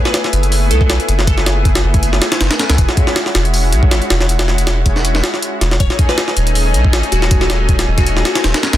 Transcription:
Already playing: analog synth pad A3 B3 E4 G#4
0.05 synth pluck B4, snare
0.14 snare, closed hi-hat
0.24 snare
0.33 sub bass F#1, analog synth pad A3 B3 E4 G#4, closed hi-hat
0.43 closed hi-hat
0.52 open hi-hat
0.71 sub bass C#2, synth pluck A4, closed hi-hat
0.81 synth pluck A4, kick
0.90 sub bass B1, snare, closed hi-hat
1.00 closed hi-hat
1.09 sub bass F#1, closed hi-hat
1.19 snare
1.27 analog synth pad A3 B3 E4 G#4, synth pluck A4, kick, closed hi-hat
1.38 snare
1.46 snare, closed hi-hat
1.65 kick, closed hi-hat
1.75 snare, closed hi-hat
1.84 sub bass F#1, analog synth pad A3 B3 E4 G#4
1.94 kick, closed hi-hat
2.03 closed hi-hat
2.13 snare
2.22 snare, closed hi-hat
2.32 snare, closed hi-hat
2.41 sub bass F#1, snare, closed hi-hat
2.51 snare, closed hi-hat
2.59 analog synth pad A3 B3 E4 G#4, snare, closed hi-hat
2.70 sub bass C#2, snare, closed hi-hat
2.78 sub bass E1, analog synth pad G#3 C#4 E4 F#4, kick, closed hi-hat
2.89 snare
2.97 kick, closed hi-hat
3.07 snare
3.16 snare, closed hi-hat
3.26 snare
3.35 sub bass E1, analog synth pad G#3 C#4 E4 F#4, snare, closed hi-hat
3.45 closed hi-hat
3.54 open hi-hat
3.73 sub bass B1, closed hi-hat
3.83 kick
3.91 sub bass G#1, snare, closed hi-hat
4.02 closed hi-hat
4.10 sub bass E1, snare, closed hi-hat
4.21 snare
4.29 analog synth pad G#3 C#4 E4 F#4, closed hi-hat
4.39 snare, closed hi-hat
4.48 snare
4.58 closed hi-hat
4.67 snare, closed hi-hat
4.86 sub bass E1, analog synth pad G#3 C#4 E4 F#4, kick, closed hi-hat
4.96 snare
5.05 closed hi-hat
5.15 snare
5.24 snare, closed hi-hat
5.34 snare
5.42 closed hi-hat
5.61 sub bass E1, snare, closed hi-hat
5.71 snare
5.80 sub bass D#1, analog synth pad A3 C#4 D#4 G#4, synth pluck C#5, kick, closed hi-hat
5.90 snare
5.99 kick, closed hi-hat
6.09 synth pluck B4, snare
6.18 snare, closed hi-hat
6.28 snare
6.36 sub bass D#1, analog synth pad A3 C#4 D#4 G#4, closed hi-hat
6.47 closed hi-hat
6.55 open hi-hat
6.74 sub bass B1, closed hi-hat
6.85 kick
6.93 sub bass G#1, snare, closed hi-hat
7.03 closed hi-hat
7.12 sub bass D#1, synth pluck F#4, closed hi-hat
7.22 synth pluck F#4, snare
7.31 analog synth pad A3 C#4 D#4 G#4, kick, closed hi-hat
7.41 synth pluck F#4, snare
7.50 snare, closed hi-hat
7.69 kick, closed hi-hat
7.79 snare, closed hi-hat
7.88 sub bass D#1, analog synth pad A3 C#4 D#4 G#4
7.98 synth pluck F#4, kick, closed hi-hat
8.06 closed hi-hat
8.17 snare
8.25 synth pluck F#4, snare, closed hi-hat
8.35 snare, closed hi-hat
8.44 sub bass D#1, snare, closed hi-hat
8.54 snare, closed hi-hat
8.63 analog synth pad A3 C#4 D#4 G#4, snare, closed hi-hat
8.73 sub bass B1, snare, closed hi-hat

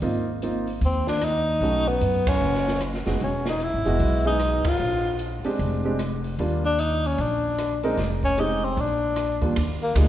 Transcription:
0.02 upright bass G#1, grand piano A#3 C4 D#4 F4, open hi-hat
0.42 grand piano A#3 C4 D#4 F4, closed hi-hat
0.67 open hi-hat
0.81 upright bass D#2, open hi-hat
0.85 tenor saxophone C4
1.07 tenor saxophone D4, snare
1.21 tenor saxophone D#4, cross-stick, closed hi-hat
1.61 upright bass B1, grand piano A3 C#4 D#4 F#4, open hi-hat
1.88 tenor saxophone B3
2.01 upright bass F#2, closed hi-hat
2.27 tenor saxophone C#4, kick, ride
2.41 upright bass F#1
2.55 snare
2.68 snare
2.81 cross-stick, closed hi-hat
2.94 snare
3.06 upright bass F1, grand piano G#3 B3 D#4 F#4, snare, open hi-hat
3.20 upright bass E1, tenor saxophone C#4, open hi-hat
3.46 tenor saxophone D#4, snare
3.60 tenor saxophone E4, closed hi-hat
3.74 upright bass G#1
3.85 upright bass F1, grand piano G#3 B3 F#4 D#5, open hi-hat
3.99 upright bass B1, open hi-hat
4.25 grand piano G#3 B3 D#4 G#4, tenor saxophone D#4
4.39 cross-stick, closed hi-hat
4.64 tenor saxophone F4, muted upright bass stroke, kick, ride
4.79 upright bass A#1
5.19 closed hi-hat
5.44 grand piano G#3 C4 D4 G4, muted upright bass stroke, open hi-hat
5.59 upright bass F1, open hi-hat
5.85 grand piano G#3 C4 D4 G4
5.99 cross-stick, closed hi-hat
6.24 open hi-hat
6.38 upright bass D#2, grand piano G3 A#3 D4 F4, open hi-hat
6.65 tenor saxophone D4
6.79 tenor saxophone D#4, closed hi-hat
7.04 tenor saxophone C#4, open hi-hat
7.18 upright bass A#1, tenor saxophone D4, open hi-hat
7.58 cross-stick, closed hi-hat
7.83 grand piano G#3 C4 D#4 A#4, open hi-hat
7.97 upright bass F1, snare, open hi-hat
8.23 tenor saxophone C#4, kick
8.37 grand piano G#3 C4 D#4 G4, tenor saxophone D#4, closed hi-hat
8.65 tenor saxophone C4
8.77 upright bass A#1, tenor saxophone D4, open hi-hat
9.16 cross-stick, closed hi-hat
9.41 grand piano D#2 G3 A#3 D4 F4, upright bass E2, kick, open hi-hat
9.56 upright bass D#2, ride
9.83 tenor saxophone A#3
9.95 upright bass D2, grand piano G3 A#3 D4 D#4 F4, tenor saxophone G#3, hi-hat pedal, ride

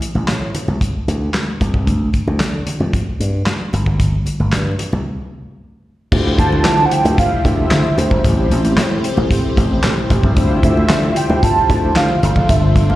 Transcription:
0.01 closed hi-hat, muted conga
0.15 slap bass A1, high conga
0.28 slap bass A2, snare, clap, closed hi-hat
0.55 closed hi-hat, low conga
0.68 slap bass C2, high conga
0.81 kick, closed hi-hat, muted conga
1.08 slap bass D2, closed hi-hat
1.34 snare, clap, closed hi-hat, muted conga, high conga
1.61 slap bass C2, kick, closed hi-hat, muted conga, low conga
1.74 kick, low conga
1.87 slap bass D2, kick, closed hi-hat
2.13 kick, closed hi-hat, muted conga
2.27 slap bass D2, high conga
2.40 slap bass D3, snare, clap, closed hi-hat
2.67 closed hi-hat, muted conga, low conga
2.80 slap bass F2, high conga
2.93 kick, closed hi-hat, muted conga
3.20 slap bass G2, closed hi-hat
3.46 snare, clap, closed hi-hat, high conga
3.73 slap bass G1, closed hi-hat, muted conga, low conga
3.86 kick, low conga
4.00 kick, closed hi-hat
4.26 closed hi-hat, muted conga
4.40 slap bass G1, high conga
4.52 slap bass G2, snare, clap, closed hi-hat, muted conga
4.79 closed hi-hat, low conga
4.93 slap bass C2, high conga
6.11 slap bass D2, string machine C3 F3 G3 E5, analog polysynth E4 F4 G4 C5, kick, crash, muted conga
6.38 slap bass D2, soft synth lead A5, kick, closed hi-hat
6.52 high conga
6.65 slap bass D3, snare, clap, closed hi-hat, muted conga
6.78 high conga
6.85 soft synth lead F#5
6.91 soft synth lead G5, closed hi-hat
7.05 slap bass D2, closed hi-hat, high conga
7.18 soft synth lead F5, kick, closed hi-hat
7.45 slap bass D2, soft synth lead E5, kick, closed hi-hat
7.71 slap bass D3, snare, clap, closed hi-hat, high conga
7.98 slap bass D2, soft synth lead C5, closed hi-hat, muted conga, low conga
8.11 slap bass G1, kick, low conga
8.24 slap bass A1, string machine C3 A3 C4 G4, analog polysynth C4 E4 G4 C5, kick, closed hi-hat, muted conga
8.51 slap bass A1, closed hi-hat
8.65 closed hi-hat, high conga
8.77 slap bass A2, snare, clap, closed hi-hat
8.91 high conga
9.04 closed hi-hat
9.17 slap bass A1, high conga
9.30 kick, closed hi-hat, muted conga
9.57 slap bass A1, kick, closed hi-hat, muted conga
9.83 slap bass A2, snare, clap, closed hi-hat, high conga
10.10 slap bass A1, kick, closed hi-hat, muted conga, low conga
10.23 slap bass C2, kick, low conga
10.36 slap bass D2, string machine F3 G3 E5, analog polysynth E4 F4 G4 C5, kick, closed hi-hat
10.63 slap bass D2, soft synth lead E5, kick, closed hi-hat, muted conga
10.77 high conga
10.89 slap bass D3, snare, clap, closed hi-hat, muted conga
11.03 high conga
11.16 soft synth lead G5, closed hi-hat, muted conga
11.29 slap bass D2, high conga
11.43 soft synth lead A5, kick, closed hi-hat
11.70 slap bass D2, kick, closed hi-hat
11.96 slap bass D3, soft synth lead F5, snare, clap, closed hi-hat, high conga
12.22 slap bass G1, string machine C3 D4, analog polysynth D4 F4 A4 C5, soft synth lead F5, closed hi-hat, low conga
12.36 slap bass F1, kick, low conga
12.49 slap bass G1, soft synth lead E5, kick, closed hi-hat, muted conga
12.76 slap bass G1, kick, closed hi-hat, muted conga
12.89 soft synth lead F5, high conga

